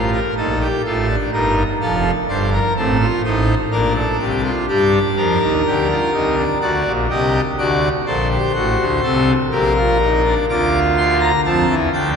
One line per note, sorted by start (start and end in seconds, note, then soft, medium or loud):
0.00 0.19 A1 medium
0.00 0.19 A2 medium
0.00 0.19 F4 medium
0.13 0.34 A#4 medium
0.37 0.67 A#1 medium
0.37 0.68 A#2 medium
0.37 0.67 D#4 medium
0.37 0.58 A4 medium
0.60 0.82 G4 medium
0.85 1.16 A1 medium
0.85 1.15 A2 medium
0.85 1.06 F4 medium
0.85 1.16 A4 medium
1.09 1.30 D4 medium
1.33 1.63 G1 medium
1.33 1.63 G2 medium
1.33 1.63 D#4 medium
1.33 1.63 A#4 medium
1.81 2.11 F1 medium
1.81 2.11 F2 medium
1.81 2.11 F4 medium
1.81 2.11 A4 medium
2.29 2.58 G1 medium
2.29 2.59 G2 medium
2.29 2.58 D4 medium
2.29 2.50 C5 medium
2.53 2.73 A#4 medium
2.76 3.07 A1 medium
2.76 3.06 A2 medium
2.76 2.97 C4 loud
2.76 3.07 A4 medium
3.01 3.21 F4 medium
3.24 3.54 A1 medium
3.24 3.54 A2 medium
3.24 3.54 D#4 loud
3.24 3.55 C5 medium
3.72 4.02 A#1 medium
3.72 4.03 A#2 medium
3.72 4.56 D4 loud
3.72 3.93 A#4 medium
3.95 4.17 A4 medium
4.20 4.50 C2 medium
4.20 4.50 C3 medium
4.20 4.41 G4 medium
4.44 4.66 F4 medium
4.68 4.98 G2 loud
4.68 4.99 G3 medium
4.68 5.52 D4 medium
4.68 4.99 G4 medium
5.16 5.38 F2 medium
5.16 5.38 F3 medium
5.16 6.42 A#4 medium
5.41 5.62 D#2 medium
5.41 5.62 D#3 medium
5.66 5.96 D2 medium
5.66 5.96 D3 medium
5.66 5.87 G4 medium
5.90 6.11 F4 medium
6.13 6.44 C2 medium
6.13 6.44 C3 medium
6.13 6.35 D#4 medium
6.37 6.58 D4 medium
6.61 6.83 D2 medium
6.61 6.83 D3 medium
6.61 6.92 F#4 medium
6.61 6.92 D5 medium
6.85 7.07 A#1 medium
6.85 7.07 A#2 medium
7.10 7.40 C2 medium
7.10 7.41 C3 medium
7.10 7.41 G4 medium
7.10 7.41 D#5 medium
7.58 7.89 D2 loud
7.58 7.88 D3 medium
7.58 7.89 F#4 medium
7.58 7.89 D5 medium
8.06 8.37 A#1 medium
8.06 8.37 A#2 medium
8.06 8.28 A4 medium
8.06 9.31 C5 medium
8.31 8.52 G4 medium
8.55 8.76 A1 medium
8.55 8.76 A2 medium
8.55 8.85 F#4 medium
8.79 9.00 D2 medium
8.79 9.00 D3 loud
9.03 9.33 C2 loud
9.03 9.33 C3 loud
9.03 9.33 A4 medium
9.51 10.34 A#1 loud
9.51 10.34 A#2 medium
9.51 9.73 G4 medium
9.51 10.34 A#4 medium
9.77 9.97 F4 medium
10.02 10.22 D#4 medium
10.25 10.45 D4 medium
10.49 11.31 D2 medium
10.49 11.31 D3 medium
10.49 11.31 F4 medium
10.49 10.79 D6 loud
10.98 11.18 C6 loud
11.21 11.41 A#5 loud
11.45 11.65 F2 medium
11.45 11.65 F3 medium
11.45 11.74 C4 medium
11.45 11.75 A5 loud
11.69 11.89 E2 medium
11.69 11.89 E3 medium
11.93 12.13 D2 medium
11.93 12.13 D3 medium
11.93 12.16 D4 medium
11.93 12.16 G5 loud